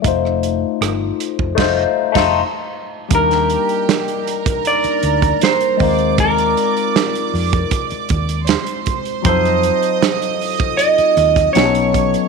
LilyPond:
<<
  \new Staff \with { instrumentName = "String section" } { \time 4/4 \key f \mixolydian \tempo 4 = 78 r1 | \key ees \major <g' g''>4. <bes' bes''>2 <d'' d'''>8~ | <d'' d'''>2. <c'' c'''>4 | <ees'' ees'''>2. <cis'' cis'''>4 | }
  \new Staff \with { instrumentName = "Clean electric guitar" } { \time 4/4 \key f \mixolydian r1 | \key ees \major bes'2 d''4 c''4 | bes'2 r2 | c''2 ees''4 cis''4 | }
  \new Staff \with { instrumentName = "Tine electric piano" } { \time 4/4 \key f \mixolydian <a ees' f' c''>2 <a ees' f' c''>8 r16 <a ees' f' c''>8 r8. | \key ees \major <g bes d' ees' bes'>2.~ <g bes d' ees' bes'>8 <aes c' ees' f' bes'>8~ | <aes c' ees' f' bes'>2.~ <aes c' ees' f' bes'>8 r8 | <ges c' ees' f' a'>2. <fis b cis' dis' aes' a'>4 | }
  \new Staff \with { instrumentName = "Fingered electric bass" } { \clef bass \time 4/4 \key f \mixolydian f,,4 g,,8 r16 f,,16 f,,8 r16 f,,8 r8. | \key ees \major ees,8. r4. r16 d,8 r8 ees,8~ | ees,8. r8. f,8 r8 ees,8. r8. | f,8. r4. r16 ees,8 b,,4 | }
  \new DrumStaff \with { instrumentName = "Drums" } \drummode { \time 4/4 <hh bd>16 ss16 hh8 <hh ss>8 hh16 bd16 <cymc bd sn>8. <cymc bd sn>16 r4 | <hh bd>16 <hh sn>16 hh16 hh16 <hh sn>16 hh16 hh16 <hh bd>16 hh16 hh16 hh16 <hh bd>16 <hh sn>16 hh16 <hho bd>16 hh16 | <hh bd>16 hh16 hh16 hh16 <hh sn>16 hh16 hho16 <hh bd>16 <hh bd>16 hh16 <hh bd>16 hh16 <hh sn>16 hh16 <hh bd>16 hh16 | <hh bd>16 hh16 hh16 hh16 <hh sn>16 hh16 hho16 <hh bd>16 hh16 hh16 hh16 <hh bd>16 <hh sn>16 hh16 <hh bd>16 hh16 | }
>>